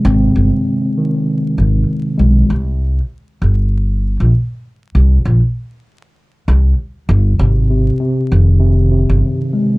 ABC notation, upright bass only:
X:1
M:4/4
L:1/16
Q:"Swing 16ths" 1/4=98
K:Cm
V:1 name="Upright bass" clef=bass
A,,,2 G,,, z6 z A,,,2 z2 =B,,,2 | C,,4 z2 G,,,4- G,,, B,,, z4 | C,,2 B,,, z6 z C,,2 z2 G,,,2 | A,,,4 z2 F,,,4- F,,, G,,, z4 |]